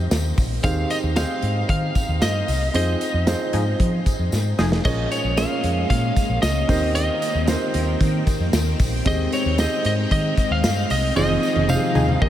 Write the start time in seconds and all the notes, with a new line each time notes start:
Already playing: D#3 C4 D#4 G4 A#4 C5
0.11 D#2, snare, closed hi-hat, tambourine
0.38 A#1, kick, open hi-hat, tambourine
0.63 D#2 D#3 C4 D#4 G4 G#4 C5 F5, kick, closed hi-hat, tambourine
0.90 D#5, closed hi-hat, tambourine
1.03 D#2
1.16 C4 D#4 G4 G#4 C5 F5, snare, closed hi-hat, tambourine
1.42 G#2, closed hi-hat
1.69 D#3 F5, kick, closed hi-hat
1.95 kick, closed hi-hat, tambourine
2.09 D#2
2.22 G2 D#5, snare, closed hi-hat, tambourine
2.48 C2, open hi-hat, tambourine
2.74 F2 C4 D#4 F4 G#4 C5 D#5, closed hi-hat, tambourine
3.01 closed hi-hat, tambourine
3.14 F2
3.27 C4 D#4 F4 G#4 C5, snare, closed hi-hat, tambourine
3.53 G#2 F3 D#4 G#4, closed hi-hat, tambourine
3.80 F3, kick, closed hi-hat
4.06 kick, closed hi-hat, tambourine
4.19 F2
4.32 G#2, snare, tambourine
4.59 F1 F3 D#4 G#4, snare, tambourine
4.72 snare
4.85 A#1 A#2 G#3 A#3 C#4 F4 G#4 A#4 C#5 D#5, kick, crash, tambourine
5.11 C#5, closed hi-hat, tambourine
5.24 A#1
5.37 C#4 F4 G#4 A#4 C#5 F5, snare, closed hi-hat, tambourine
5.64 F2, closed hi-hat, tambourine
5.90 A#2 F5, kick, closed hi-hat, tambourine
6.16 kick, closed hi-hat, tambourine
6.29 A#1
6.42 C#2 D#5, snare, closed hi-hat, tambourine
6.68 D#2 D#3 C4 D#4 G4 A#4 C5 G5, kick, open hi-hat, tambourine
6.95 D#5, closed hi-hat, tambourine
7.22 closed hi-hat, tambourine
7.35 D#2
7.47 C4 D#4 F4 A#4 C5, snare, closed hi-hat, tambourine
7.54 G4
7.74 D#2, closed hi-hat, tambourine
8.01 D#3, kick, closed hi-hat, tambourine
8.27 kick, closed hi-hat, tambourine
8.40 F2
8.53 D#2, snare, closed hi-hat, tambourine
8.79 A#1, kick, open hi-hat, tambourine
9.05 D#2 D#3 G#3 C4 D#4 G4 G#4 C5 D#5, kick, closed hi-hat, tambourine
9.32 C#5, closed hi-hat, tambourine
9.45 D#2
9.58 C4 D#4 G4 G#4 C5 D#5, snare, closed hi-hat, tambourine
9.85 G#2 D#5, closed hi-hat, tambourine
10.11 D#3 D#5, kick, closed hi-hat, tambourine
10.37 kick, closed hi-hat, tambourine
10.51 D#2 F5
10.64 G2, snare, closed hi-hat, tambourine
10.90 C2 D#5, open hi-hat, tambourine
11.16 F1 F3 C4 D#4 F4 G#4 C5 D#5, high tom, tambourine
11.30 high tom
11.43 tambourine
11.56 F1, high tom
11.68 C4 D#4 F4 G4 C5 F5, mid tom, tambourine
11.76 G#4
11.95 D#2 F3 D#4 G#4, mid tom, tambourine
12.09 mid tom
12.21 D#2 D#3 A#3 D#4 G4 A#4 D#5, kick